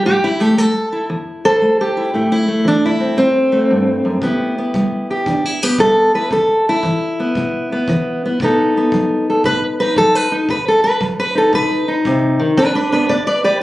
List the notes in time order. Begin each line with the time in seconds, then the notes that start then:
0.05 A2 G4
0.24 E4
0.40 A3 G4
0.58 A3 A4
0.92 E4
1.10 E2
1.45 A4 C5
1.62 A3
1.81 G4
1.97 E4
2.14 A2 A3 E4
2.32 E4
2.48 A3
2.65 E3 D4
2.86 E4
3.00 C4
3.17 E2 C4
3.52 A3
3.71 G2
4.05 F#2
4.22 E2 B3 E4 G4, kick
4.58 B3
4.74 G3, kick
5.10 G4
5.26 E2 D4, kick
5.45 E4
5.63 B3 G4
5.78 G3 A4, kick
6.14 E4 B4
6.31 E2 A4, kick
6.69 E4
6.83 E3, kick
7.20 B3
7.35 B2, kick
7.72 B3
7.88 E3, kick
8.25 B3
8.40 B2 B3 D#4, kick
8.44 A4
8.77 B3
8.92 F#3, kick
9.30 A4
9.44 B2 B4, kick
9.80 D#4 B4
9.96 F#3 A4, kick
10.15 B4
10.32 D#4
10.49 B2 B4, kick
10.68 A4
10.84 B4
11.01 F#3, kick
11.20 B4
11.35 D#4 A4
11.52 B2 B4, kick
11.88 D#4
12.05 C3, kick
12.40 D#3
12.57 E2 D4 B4, kick
12.75 D4 B4
12.92 B3 D4 B4
13.09 B3 B4 D5, kick
13.27 B4 D5
13.44 G4 B4 D5